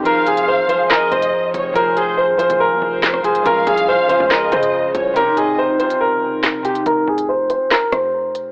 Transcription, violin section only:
\new Staff \with { instrumentName = "Violin section" } { \time 4/4 \key f \minor \tempo 4 = 141 f''2 ees''4. des''8 | r8 c''8 r4. c''4. | f''2 ees''4. des''8 | r8 ees''8 r2. |
r1 | }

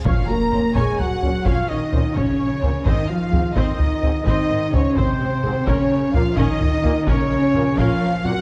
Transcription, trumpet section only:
\new Staff \with { instrumentName = "Trumpet section" } { \time 12/8 \key bes \minor \tempo 4. = 85 f''8 bes''4 aes''8 ges''4 f''8 ees''4 des''4. | ees''8 f''4 ees''4. ees''4 des''8 c''4. | des''4 f''8 ees''4. des''4. f''4 ges''8 | }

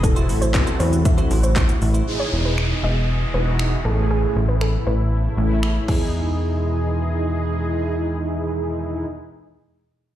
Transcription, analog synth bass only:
\new Staff \with { instrumentName = "Analog synth bass" } { \clef bass \time 4/4 \key e \major \tempo 4 = 118 e,,8 a,,4 e,4 a,,4 a,,8 | r8 e,,4 e,,4 e,,4 a,,8~ | a,,8 a,,4 a,,4 a,,4 e,8~ | e,1~ |
e,1 | }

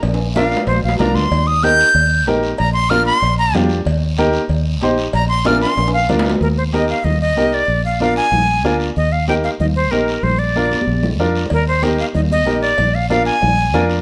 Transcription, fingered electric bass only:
\new Staff \with { instrumentName = "Fingered electric bass" } { \clef bass \time 4/4 \key ees \major \tempo 4 = 188 bes,,2 bes,,8 bes,,8 c,8 d,8 | ees,2 ees,4 bes,,4 | bes,,2 bes,,4 f,4 | ees,2 ees,4 bes,,4 |
bes,,2 bes,,4 d,4 | ees,2 ees,4 c,4 | bes,,2 bes,,4 d,4 | ees,2 ees,4 bes,,4 |
bes,,2 bes,,4 f,4 | ees,2 ees,4 bes,,4 | bes,,2 bes,,4 f,4 | }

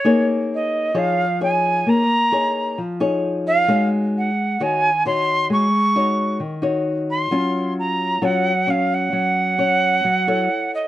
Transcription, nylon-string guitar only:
\new Staff \with { instrumentName = "Nylon-string guitar" } { \time 4/4 \key bes \minor \tempo 4 = 132 << { <ees' aes' des''>2 <ees' aes' des''>8 r8 <ees' aes' des''>4~ | <ees' aes' des''>8 r8 <ees' aes' des''>4 r8 <ees' aes' des''>4. | <ees' ges' des''>4. r8 <ees' ges' des''>8 r8 <ees' ges' des''>4~ | <ees' ges' des''>8 r8 <ees' ges' des''>4 r8 <ees' ges' des''>4. |
<des' f' des''>2 <des' f' des''>8 r8 <des' des''>4~ | <des' des''>4 <des' des''>4 r8 <e' a' des''>4. | } \\ { bes2 f2 | bes2 f2 | aes2 ees2 | aes2 ees2 |
ges2 ges2 | ges2 ges4 r4 | } >> }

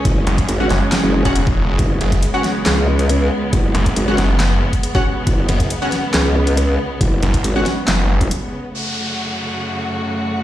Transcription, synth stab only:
\new Staff \with { instrumentName = "Synth stab" } { \time 4/4 \key fis \minor \tempo 4 = 138 r4 r16 <cis' fis' fis''>16 r4 r16 <cis' fis' fis''>16 r4 | r4 r16 <cis' fis' fis''>16 r2 r8 | r4 r16 <cis' fis' fis''>16 r4. r16 <cis' fis' fis''>16 r8 | r4 r16 <cis' fis' fis''>16 r2 r8 |
r4 r16 <cis' fis' fis''>16 r2 r8 | r1 | }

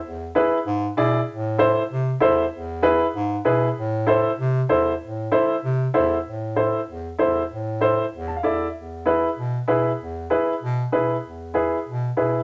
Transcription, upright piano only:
\new Staff \with { instrumentName = "Upright piano" } { \time 4/4 \key a \minor \tempo 4 = 193 << { r1 | r1 | r1 | r1 |
r1 | r1 | r2 r8 a''16 f''16 e''4 | r1 |
r1 | r1 | } \\ { r4 <e' gis' b'>8 r4. <e' gis' d''>8 r8 | r4 <e' a' c''>8 r4. <e' a' c''>8 r8 | r4 <e' gis' b'>8 r4. <e' gis' b'>8 r8 | r4 <e' a' c''>8 r4. <e' a' c''>8 r8 |
r4 <e' a' c''>8 r4. <e' a' c''>8 r8 | r4 <e' a' c''>8 r4. <e' a' c''>8 r8 | r4 <e' a' c''>8 r4. <e' a' d''>8 r8 | r4 <e' gis' b'>8 r4. <e' gis' b'>8 r8 |
r4 <e' gis' b'>8 r4. <e' gis' b'>8 r8 | r4 <e' gis' b'>8 r4. <e' gis' b'>8 r8 | } >> }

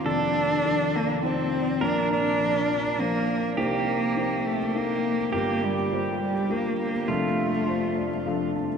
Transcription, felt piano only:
<<
  \new Staff \with { instrumentName = "Felt piano" } { \time 3/4 \key f \mixolydian \tempo 4 = 102 <ees f a'>8 r8 <f ees' a'>8 r8 <f ees' c''>8 r8 | <f d' bes'>8 r8 <f d' bes'>8 r8 <f d' c''>8 r8 | <bes ees' c''>8 r8 <bes ees' c''>8 r8 <bes ees' a'>8 r8 | <g f' bes'>8 r8 <g f' c''>8 r8 <g f' bes'>8 r8 |
<f d' a'>8 r8 <f d' c''>8 d''8 <f d' a' f''>8 a''8 | }
  \new Staff \with { instrumentName = "Felt piano" } { \clef bass \time 3/4 \key f \mixolydian <f,, f,>2. | <bes,, bes,>2. | <c, c>2. | <g,, g,>2. |
<f,, f,>2. | }
>>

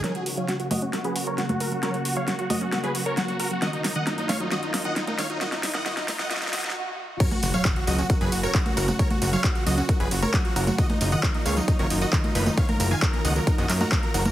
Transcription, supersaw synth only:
\new Staff \with { instrumentName = "Supersaw synth" } { \time 4/4 \key fis \major \tempo 4 = 134 <ais' cis''>16 fis'16 fis'16 <cis'' eis''>16 fis'16 fis'16 <fis' dis''>16 fis'16 fis'16 <gis' b'>16 fis'16 <ais' cis''>16 fis'16 fis'16 <fis' ais'>16 fis'16 | <ais' cis''>16 fis'16 fis'16 <cis'' eis''>16 fis'16 fis'16 <fis' dis''>16 fis'16 fis'16 <gis' b'>16 fis'16 <ais' cis''>16 fis'16 fis'16 <fis' ais'>16 fis'16 | <fis' dis''>16 dis'16 dis'16 <dis'' fis''>16 dis'16 dis'16 <cis'' eis''>16 dis'16 <fis' dis''>16 dis'16 dis'16 <dis'' fis''>16 dis'16 dis'16 <cis'' eis''>16 dis'16 | <fis' dis''>16 dis'16 dis'16 <dis'' fis''>16 <fis' dis''>16 dis'16 dis'16 <dis'' fis''>16 <fis' dis''>16 dis'16 <fis' dis''>16 dis'16 r4 |
<ais' cis''>16 fis'16 fis'16 <cis'' eis''>16 fis'16 fis'16 <fis' dis''>16 fis'16 fis'16 <gis' b'>16 fis'16 <ais' cis''>16 fis'16 fis'16 <fis' ais'>16 fis'16 | <ais' cis''>16 fis'16 fis'16 <cis'' eis''>16 fis'16 fis'16 <fis' dis''>16 fis'16 fis'16 <gis' b'>16 fis'16 <ais' cis''>16 fis'16 fis'16 <fis' ais'>16 fis'16 | <fis' dis''>16 dis'16 dis'16 <dis'' fis''>16 dis'16 dis'16 <cis'' eis''>16 dis'16 dis'16 <ais' cis''>16 dis'16 <fis' dis''>16 dis'16 dis'16 <dis' b'>16 dis'16 | <cis'' eis''>16 ais'16 ais'16 <eis'' gis''>16 ais'16 ais'16 <dis'' fis''>16 ais'16 ais'16 <fis' dis''>16 ais'16 <fis' ais'>16 ais'16 ais'16 <fis' ais'>16 ais'16 | }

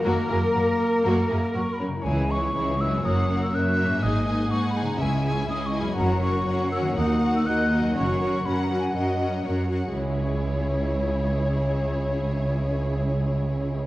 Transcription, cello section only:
\new Staff \with { instrumentName = "Cello section" } { \clef bass \time 4/4 \key cis \dorian \tempo 4 = 121 ais'2.~ ais'8 r8 | cis,4 cis,4 fis,4 fis,4 | gis,4 gis,4 cis,4 cis,4 | fis,4 fis,4 dis,4 dis,4 |
fis,4 fis,4 fis,4 fis,4 | cis,1~ | cis,1 | }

